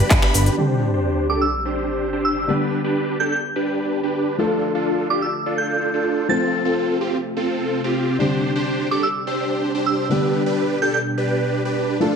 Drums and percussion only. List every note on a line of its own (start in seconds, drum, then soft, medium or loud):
0.11 kick loud
0.11 clap loud
0.11 closed hi-hat medium
0.11 ride medium
0.11 shaker soft
0.22 finger snap medium
0.22 clap soft
0.22 closed hi-hat soft
0.34 open hi-hat medium
0.34 shaker medium
0.46 closed hi-hat medium
0.46 shaker soft